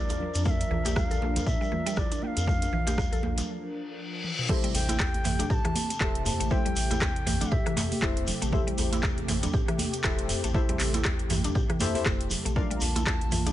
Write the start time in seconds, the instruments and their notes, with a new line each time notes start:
Already playing: analog synth pad F3 D4 A#4, bansuri D5
0.09 synth pluck D4, closed hi-hat, djembe tone, shekere
0.20 muted conga, low conga
0.34 sub bass F2, closed hi-hat, shekere
0.45 synth pluck A3, bansuri F5, kick, djembe tone, low conga, shekere
0.50 bansuri E5
0.60 closed hi-hat, muted conga, shekere
0.71 sub bass A#1, synth pluck E3, djembe tone
0.85 synth pluck G4, closed hi-hat, djembe slap, high conga, shekere
0.96 synth pluck G3, bansuri F5, kick, cross-stick, djembe bass, shekere
1.10 sub bass A#1, synth pluck A4, closed hi-hat, muted conga, djembe tone, shekere
1.22 djembe slap, high conga
1.36 closed hi-hat, djembe slap, high conga, djembe tone, low conga, shekere
1.46 sub bass A#2, bansuri E5, kick, muted conga, shekere
1.61 synth pluck G3, shekere
1.72 synth pluck E3, high conga, djembe tone
1.86 synth pluck G3, closed hi-hat, muted conga, shekere
1.96 sub bass A#1, synth pluck E4, bansuri D5, kick, cross-stick, djembe tone, shekere
2.12 synth pluck D4, closed hi-hat, shekere
2.22 bansuri G5, muted conga, high conga
2.27 bansuri F5
2.37 sub bass F2, closed hi-hat, djembe tone, shekere
2.46 synth pluck A3, kick, low conga, shekere
2.62 closed hi-hat, muted conga, djembe tone, shekere
2.73 sub bass A#1, synth pluck E3
2.87 synth pluck G4, closed hi-hat, djembe slap, high conga, shekere
2.98 synth pluck G3, kick, cross-stick, djembe tone, djembe bass, shekere
3.11 sub bass A#1, synth pluck A4, closed hi-hat, muted conga, shekere
3.23 djembe slap, high conga, djembe tone
3.37 closed hi-hat, djembe slap, high conga, low conga, shekere
3.49 reverse cymbal
4.24 high tom
4.39 mid tom
4.49 analog synth pad C3 A3 G4, synth pluck A3, synth stab E4 G4 A4 C5 E5, kick, crash, low conga, shekere
4.64 synth pluck G3, closed hi-hat, muted conga
4.74 sub bass A1, bansuri G5, open hi-hat, djembe tone, shekere
4.89 synth pluck E4, closed hi-hat, djembe slap, high conga, shekere
4.99 synth pluck E4, kick, cross-stick, clap, djembe tone, djembe bass
5.14 sub bass A1, closed hi-hat, muted conga
5.24 synth pluck E3, mid tom, open hi-hat, djembe slap, high conga, shekere
5.39 synth pluck D4, closed hi-hat, djembe slap, high conga, djembe tone, low conga, shekere
5.50 sub bass A2, synth pluck G4, bansuri A#5, kick, muted conga, shekere
5.54 bansuri A5
5.65 synth pluck E3, cross-stick, closed hi-hat, djembe tone
5.75 open hi-hat, high conga, shekere
5.90 closed hi-hat, muted conga, shekere
6.00 sub bass E1, synth stab E4 G4 A4 C5 E5, synth pluck A4, kick, cross-stick, clap, djembe tone
6.15 closed hi-hat
6.25 bansuri A5, mid tom, open hi-hat, muted conga, djembe tone, high conga, shekere
6.40 sub bass A1, synth pluck A3, closed hi-hat, shekere
6.50 synth pluck A3, synth stab E4 G4 A4 C5 E5, bansuri G5, kick, low conga, shekere
6.65 synth pluck G3, closed hi-hat, muted conga, djembe tone
6.76 sub bass A1, open hi-hat, shekere
6.90 synth pluck E4, closed hi-hat, djembe slap, djembe tone, high conga, shekere
7.01 synth pluck E4, kick, cross-stick, clap, djembe bass, shekere
7.16 sub bass A1, closed hi-hat, muted conga
7.26 synth pluck E3, mid tom, open hi-hat, djembe slap, high conga, djembe tone, shekere
7.41 synth pluck D4, closed hi-hat, djembe slap, high conga, low conga, shekere
7.51 sub bass A2, synth pluck G4, bansuri E5, kick, djembe tone, shekere
7.66 synth pluck E3, cross-stick, closed hi-hat
7.76 mid tom, open hi-hat, djembe slap, high conga, shekere
7.91 open hi-hat, muted conga, djembe tone, high conga, shekere
8.02 sub bass E1, synth stab E4 G4 A4 C5 E5, synth pluck A4, kick, cross-stick, clap, mid tom, high conga
8.17 closed hi-hat, djembe tone
8.27 open hi-hat, muted conga, low conga, shekere
8.42 sub bass A1, synth pluck A3, closed hi-hat, shekere
8.52 synth pluck A3, synth stab E4 G4 A4 C5 E5, kick, djembe tone, low conga, shekere
8.67 synth pluck G3, closed hi-hat, muted conga
8.78 sub bass A1, open hi-hat, djembe tone, shekere
8.92 synth pluck E4, closed hi-hat, djembe slap, high conga, shekere
9.03 synth pluck E4, kick, cross-stick, clap, djembe bass, shekere
9.18 sub bass A1, closed hi-hat, muted conga, djembe tone
9.28 synth pluck E3, mid tom, open hi-hat, djembe slap, high conga, shekere
9.43 synth pluck D4, closed hi-hat, djembe slap, high conga, djembe tone, low conga, shekere
9.52 sub bass A2, synth pluck G4, kick, muted conga, shekere
9.68 synth pluck E3, cross-stick, closed hi-hat
9.78 open hi-hat, high conga, djembe tone, shekere
9.93 closed hi-hat, muted conga, shekere
10.04 sub bass E1, synth stab E4 G4 A4 C5 E5, synth pluck A4, kick, cross-stick, clap, djembe tone, shekere
10.19 closed hi-hat
10.28 mid tom, open hi-hat, muted conga, high conga, shekere
10.43 sub bass A1, synth pluck A3, closed hi-hat, djembe tone, shekere
10.54 synth pluck A3, synth stab E4 G4 A4 C5 E5, kick, low conga, shekere
10.69 synth pluck G3, closed hi-hat, muted conga, djembe tone
10.79 sub bass A1, clap, open hi-hat, shekere
10.93 synth pluck E4, closed hi-hat, djembe slap, high conga, shekere
11.05 synth pluck E4, kick, cross-stick, clap, djembe tone, djembe bass
11.19 sub bass A1, closed hi-hat, muted conga
11.30 synth pluck E3, mid tom, open hi-hat, djembe slap, djembe tone, high conga, shekere
11.44 synth pluck D4, closed hi-hat, djembe slap, high conga, low conga, shekere
11.54 sub bass A2, synth pluck G4, kick, muted conga, shekere
11.70 synth pluck E3, cross-stick, closed hi-hat, djembe tone
11.80 synth stab E4 G4 A4 C5 E5, mid tom, open hi-hat, djembe slap, high conga, shekere
11.95 synth stab E4 G4 A4 C5 E5, open hi-hat, muted conga, high conga, djembe tone, shekere
12.06 sub bass E1, synth pluck A4, kick, cross-stick, clap, mid tom, high conga, shekere
12.21 closed hi-hat
12.30 open hi-hat, muted conga, djembe tone, low conga, shekere
12.45 sub bass A#1, synth pluck A3, closed hi-hat, shekere
12.56 analog synth pad D3 A#3 F4, synth pluck A3, synth stab D4 F4 A#4 D5 F5, kick, low conga, shekere
12.70 synth pluck G3, closed hi-hat, muted conga
12.75 bansuri A#5
12.80 sub bass A#1, bansuri A5, open hi-hat, djembe tone, shekere
12.96 synth pluck E4, closed hi-hat, djembe slap, high conga, shekere
13.06 synth pluck E4, kick, cross-stick, clap, djembe tone, djembe bass, shekere
13.21 sub bass A#1, closed hi-hat, muted conga
13.31 synth pluck E3, mid tom, open hi-hat, djembe slap, high conga, shekere
13.46 synth pluck D4, closed hi-hat, djembe slap, high conga, djembe tone, low conga, shekere